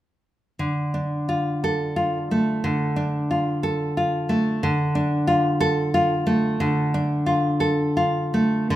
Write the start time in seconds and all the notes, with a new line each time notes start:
0.59 D3
0.94 D4
1.29 F4
1.64 A4
1.96 F4
2.31 A3
2.64 D3
2.96 D4
3.31 F4
3.63 A4
3.97 F4
4.29 A3
4.63 D3
4.95 D4
5.27 F4
5.61 A4
5.94 F4
6.27 A3
6.60 D3
6.94 D4
7.26 F4
7.60 A4
7.97 F4
8.34 A3
8.70 D3